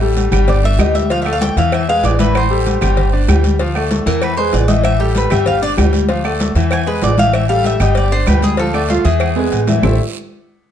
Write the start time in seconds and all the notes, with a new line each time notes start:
Already playing: A1
0.01 G3 G4 A4, high conga
0.17 cowbell, high conga, low timbale, low agogo, short guiro
0.31 G1 G3 G4 G5, cowbell, high conga, low conga, low agogo, short guiro, claves
0.48 D5, cowbell, high conga, low conga, low agogo, long guiro
0.63 D4 D5 E5, high conga, low agogo
0.78 D2 G3 G4 D#5 G5, cowbell, high conga, low timbale, low agogo, short guiro, claves
0.95 E5, cowbell, high conga, short guiro
1.10 F3 F4 F5, cowbell, high conga, low agogo, long guiro
1.22 A3 A4 E5, high conga, low agogo
1.26 D5, claves
1.33 F5
1.41 G5, cowbell, high conga, low timbale, short guiro
1.57 E2 E3 E4 E5 F5, cowbell, low agogo, short guiro
1.72 E5, cowbell, high conga, low agogo, long guiro, claves
1.88 G#3 G#4 B4 F5, high conga
2.03 A1 D5, cowbell, high conga, low timbale, low agogo, short guiro
2.19 E3 E4 B4 E5, cowbell, high conga, low agogo, short guiro
2.35 C5, cowbell, high conga, low agogo, long guiro, claves
2.51 G3 G4 A4, high conga
2.66 cowbell, high conga, low timbale, low agogo, short guiro
2.81 G1 G3 G4 G5, cowbell, high conga, low conga, low agogo, short guiro, claves
2.97 cowbell, high conga, low conga, low agogo, long guiro
3.13 D4 D5, high conga, low agogo
3.28 D2 G3 G4 G5, cowbell, high conga, low timbale, low agogo, short guiro, claves
3.44 cowbell, high conga, short guiro
3.59 F3 F4 F5, cowbell, high conga, low agogo, long guiro
3.75 A3 A4 D5, high conga, low agogo, claves
3.91 cowbell, high conga, low timbale, short guiro
4.06 E2 E3 E4 A#4 E5, cowbell, low agogo, short guiro
4.22 B4, cowbell, high conga, low agogo, long guiro, claves
4.37 G#3 G#4 B4 C5, high conga
4.53 A1 D5, cowbell, high conga, low timbale, low agogo, short guiro
4.68 E3 E4 D#5 E5, cowbell, high conga, low agogo, short guiro
4.84 E5, cowbell, high conga, low agogo, long guiro, claves
4.99 G3 G4 A4, high conga
5.15 B4, cowbell, high conga, low timbale, low agogo, short guiro
5.30 G1 G3 G4 E5 G5, cowbell, high conga, low conga, low agogo, short guiro, claves
5.46 F5, cowbell, high conga, low conga, low agogo, long guiro
5.62 D4 D5, high conga, low agogo
5.77 D2 G3 G4 G5, cowbell, high conga, low timbale, low agogo, short guiro, claves
5.93 cowbell, high conga, short guiro
6.09 F3 F4 F5, cowbell, high conga, low agogo, long guiro
6.24 A3 A4 D5, high conga, low agogo, claves
6.40 cowbell, high conga, low timbale, short guiro
6.55 E2 E3 E4 E5, cowbell, low agogo, short guiro
6.71 G#5, cowbell, high conga, low agogo, long guiro, claves
6.87 G#3 G#4 B4, high conga
7.02 A1 D5, cowbell, high conga, low timbale, low agogo, short guiro
7.18 E3 E4 E5 F5, cowbell, high conga, low agogo, short guiro
7.33 E5, cowbell, high conga, low agogo, long guiro, claves
7.49 G3 G4 A4 F5, high conga
7.64 E5, cowbell, high conga, low timbale, low agogo, short guiro
7.80 G1 G3 G4 D#5 G5, cowbell, high conga, low conga, low agogo, short guiro, claves
7.95 D5, cowbell, high conga, low agogo, long guiro
8.11 D4 C5 D5, high conga, low agogo
8.26 D2 G3 G4 B4 G5, cowbell, high conga, low timbale, low agogo, short guiro, claves
8.42 G#4, cowbell, high conga, short guiro
8.57 F3 F4 A4 F5, cowbell, high conga, low agogo, long guiro
8.74 A3 D4 A4 D5, high conga, low agogo, claves
8.89 F4, cowbell, high conga, low timbale, short guiro
9.05 E2 E3 E4 G#4 E5, cowbell, low agogo, short guiro
9.20 cowbell, high conga, low agogo, long guiro, claves
9.36 G#3 G#4 B4, high conga, high timbale
9.51 A1, cowbell, high conga, low agogo, short guiro
9.67 E3 E4 E5, cowbell, high conga, low timbale, low agogo, short guiro
9.83 A1 A3 E4 G4 A4 C5 E5, low bongo, low conga, low timbale, long guiro, claves